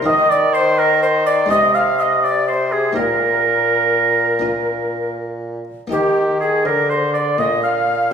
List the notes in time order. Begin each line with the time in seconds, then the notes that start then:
0.02 D#3 D#4 A#4 D#5 F5
0.10 D#5
0.29 D5
0.53 C5
0.78 A#4
1.03 C5
1.26 D5
1.46 G#3 D#4 G#4
1.50 C3 D#5
1.75 F5
1.99 D#5 F5
2.23 D5
2.47 C5 D5
2.53 C5
2.72 G#4
2.93 A#3 D#4 G4 A#4
2.97 A#2 A#4
4.39 A#3 D4 F4
5.87 A#3 D#4 G4
5.92 D#3 G4
6.40 G#4
6.65 D3 A#4 C5
6.90 C5
7.14 D5
7.38 A#2 D#5
7.63 F5